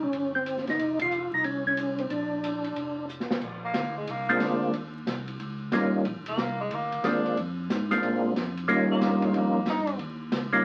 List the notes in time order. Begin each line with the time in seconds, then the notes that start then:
0.01 C2 C#4
0.12 G1, ride
0.35 C4
0.46 hi-hat pedal, ride
0.57 snare
0.67 G1 D#4, snare, ride
0.79 F1, ride
0.99 F4, kick, ride
1.11 hi-hat pedal
1.32 C2 D#4
1.44 C2 C#4, ride
1.67 C#4
1.77 hi-hat pedal, ride
1.98 C4, ride
2.09 A#1 D4, ride
2.44 hi-hat pedal, ride
2.64 ride
2.76 F1, ride
3.09 hi-hat pedal
3.20 snare
3.30 F1, snare
3.41 A#1, kick, crash
3.65 A#3
3.74 D2, snare, hi-hat pedal, ride
3.97 G#3
4.07 C2 A#3, ride
4.29 G#3 A#3 C4 D4 F4
4.40 D2 D4, snare, hi-hat pedal, ride
4.73 D#2, ride
5.06 C2, snare, hi-hat pedal, ride
5.28 ride
5.39 C#2, ride
5.72 G#1 G3 A#3 C#4 D#4 F4, snare, hi-hat pedal, ride
6.05 A#1, ride
6.16 G#1
6.26 F1 A#3, ride
6.38 C2, snare, hi-hat pedal
6.60 G#3
6.71 D2 A#3, ride
6.92 D2, ride
7.04 D#2 G#3 A#3 C4 D4 F4, snare, hi-hat pedal, ride
7.26 ride
7.37 F2, ride
7.70 G#2, snare, hi-hat pedal, ride
7.91 G#3 A#3 C4 D4 F4, snare, ride
8.03 A#2, ride
8.35 F2, snare, hi-hat pedal, ride
8.57 ride
8.68 D#2 G3 A#3 C#4 D#4 F4, ride
8.91 A#3
9.01 G2, snare, hi-hat pedal, ride
9.22 G#3, kick, ride
9.34 F2 A#3, ride
9.66 G2 D#4, snare, hi-hat pedal, ride
9.87 ride
9.99 D#2, ride
10.32 C#2, snare, hi-hat pedal, ride
10.53 G3 A#3 C#4 D#4 F4